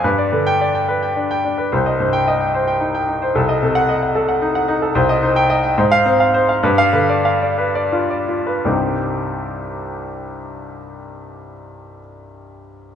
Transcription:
<<
  \new Staff \with { instrumentName = "Grand piano" } { \time 6/8 \key c \minor \tempo 4. = 70 << { r8. g''8 r4. r16 | r8. g''8 r4. r16 | r8. ges''8 r4. r16 | r8. g''8 r8 f''8 r8. |
r16 f''8 r2 r16 | <c, g, g c' ees' g'>2.~ | <c, g, g c' ees' g'>2. | } \\ { b'16 d''16 b'8 d''16 g''16 b'16 g''8 g''16 d'16 b'16 | c''16 ees''16 c''8 ees''16 g''16 c''16 g''8 g''16 ees'16 c''16 | a'16 ees''16 a'8 ees''16 ges''16 a'16 ges''16 ees'16 ges''16 ees'16 a'16 | c''16 ees''16 c''8 ees''16 g''16 c''8 c''16 f''16 c''16 f''16 |
b'8 b'16 d''16 f''16 d''16 b'16 d''16 f'16 d''16 f'16 b'16 | r2. | r2. | } >> }
  \new Staff \with { instrumentName = "Grand piano" } { \clef bass \time 6/8 \key c \minor g,8 d4 r8 d'4 | c,8 g,4 r8 ees'4 | c,8 c4 r4. | c,8 ees'4 aes,8 c'4 |
g,8 d4 r8 d'4 | r2. | r2. | }
>>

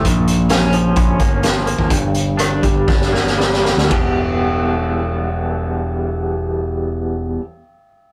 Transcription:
<<
  \new Staff \with { instrumentName = "Clean electric guitar" } { \clef bass \time 4/4 \key e \minor \tempo 4 = 113 ais,4 cis'8 eis8 cis'8 ais8 eis8 ais8 | g,4 d'8 g8 d'8 bes8 g8 bes8 | <e, b, e g b g'>1~ | <e, b, e g b g'>1 | }
  \new Staff \with { instrumentName = "Picked electric bass" } { \clef bass \time 4/4 \key e \minor ais,,2 ais,,8 g,,4~ g,,16 gis,,16 | g,,4. g,,8 g,,8 g,,4~ g,,16 d,16 | e,,1~ | e,,1 | }
  \new DrumStaff \with { instrumentName = "Drums" } \drummode { \time 4/4 <hh bd>8 hh8 <hh sn>8 hh8 <hh bd>8 <hh bd>8 <hh sn>8 hh16 bd16 | <hh bd>8 hh8 <hh ss>8 <hh bd>8 <bd sn>16 sn16 sn16 sn16 sn16 sn16 sn16 sn16 | <bd cymr>4 r4 r4 r4 | r4 r4 r4 r4 | }
>>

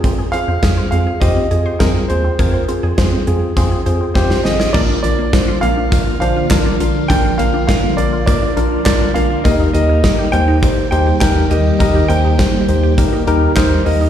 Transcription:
<<
  \new Staff \with { instrumentName = "Grand piano" } { \time 4/4 \key bes \mixolydian \tempo 4 = 102 r8 f''4 f''8 ees''4 bes'8 c''8~ | c''4. r4. c''8 ees''8 | d''8 d''4 f''4 f''4. | g''8 f''8 f''8 d''8 d''4 d''8 f''8 |
ees''8 ees''4 g''4 g''8 g''8 ees''8 | ees''8 g''2 r8 c''8 ees''8 | }
  \new Staff \with { instrumentName = "Tine electric piano" } { \time 4/4 \key bes \mixolydian <c' f' aes'>8 <c' f' aes'>8 <c' f' aes'>8 <c' f' aes'>8 <c' f' g'>8 <c' f' aes'>8 <c' f' aes'>8 <c' f' aes'>8 | <c' f' bes'>8 <c' f' aes'>8 <c' f' aes'>8 <c' f' aes'>8 <c' f' aes'>8 <c' f' aes'>8 <c' f' g'>8 <c' f' aes'>8 | <d' f' bes'>8 <d' f' bes'>8 <d' f' c''>8 <d' f' bes'>8 <d' f' bes'>8 <d' f' c''>8 <d' f' bes'>8 <d' f' bes'>8 | <d' f' bes'>8 <d' f' bes'>8 <d' f' bes'>8 <d' f' bes'>8 <d' f' bes'>8 <d' f' bes'>8 <d' f' bes'>8 <d' f' bes'>8 |
<ees' g' bes'>8 <ees' g' bes'>8 <ees' g' bes'>8 <ees' g' c''>8 <ees' g' c''>8 <ees' g' c''>8 <ees' g' bes'>8 <ees' g' bes'>8 | <ees' g' bes'>8 <ees' g' c''>8 <ees' g' c''>8 <ees' g' c''>8 <ees' g' bes'>8 <ees' g' bes'>8 <ees' g' bes'>8 <ees' g' bes'>8 | }
  \new Staff \with { instrumentName = "Synth arpeggio sound" } { \time 4/4 \key bes \mixolydian c'16 aes'16 c''16 c'16 aes'16 c''16 c'16 aes'16 c''16 c'16 aes'16 c''16 c'16 r16 c''16 c'16 | aes'16 c''16 c'16 aes'16 c''16 c'16 aes'16 r16 c'16 aes'16 c''16 c'16 r16 c''16 c'16 aes'16 | bes16 d'16 r16 bes16 d'16 f'16 bes16 d'16 r8 d'16 f'16 r16 d'16 f'16 r16 | d'16 f'16 bes16 d'16 r16 bes16 r16 f'16 bes16 d'16 f'16 r16 d'16 r16 bes16 d'16 |
bes16 ees'16 r16 bes16 ees'16 g'16 bes16 ees'16 r8 ees'16 g'16 r16 ees'16 g'16 r16 | ees'16 g'16 bes16 ees'16 r16 bes16 r16 g'16 bes16 ees'16 g'16 r16 ees'16 r16 bes16 ees'16 | }
  \new Staff \with { instrumentName = "String machine" } { \clef bass \time 4/4 \key bes \mixolydian << { r1 | r1 | <d f f'>1~ | <d f f'>1 |
<ees g g'>1~ | <ees g g'>1 | } \\ { r1 | r1 | bes1~ | bes1~ |
bes1~ | bes1 | } >> }
  \new Staff \with { instrumentName = "Analog synth bass" } { \clef bass \time 4/4 \key bes \mixolydian f,8 r16 f,16 f,8 f,8 f,8 f,8 f,8 ees,8 | f,8 r16 f,16 f,8 f,8 f,8 f,8 f,8 aes,,8 | bes,,8 bes,,8. r16 bes,,8. r16 bes,,8 bes,,8 bes,,8 | bes,,8 bes,,8. r16 bes,,8. r16 bes,,8 bes,,8 bes,,8 |
ees,8 ees,8. r16 ees,8. r16 ees,8 ees,8 ees,8 | ees,8 ees,8. r16 ees,8. r16 ees,8 ees,8 ees,8 | }
  \new DrumStaff \with { instrumentName = "Drums" } \drummode { \time 4/4 <hh bd>8 hh8 <hh bd sn>8 hh8 <hh bd>8 hh8 <hh bd sn>8 hh8 | <hh bd>8 hh8 <hh bd sn>8 hh8 <hh bd>8 hh8 <bd sn>16 sn16 sn16 sn16 | <cymc bd>8 hh8 <hh bd sn>8 hh8 <hh bd>8 hh8 <hc hh bd sn>8 hh8 | <hh bd>8 hh8 <hh bd sn>8 hh8 <hh bd>8 hh8 <hc hh bd sn>8 hh8 |
<hh bd>8 hh8 <hh bd sn>8 hh8 <hh bd>8 hh8 <hc hh bd sn>8 hh8 | <hh bd>8 hh8 <hh bd sn>8 hh8 <hh bd>8 hh8 <hc hh bd sn>8 hho8 | }
>>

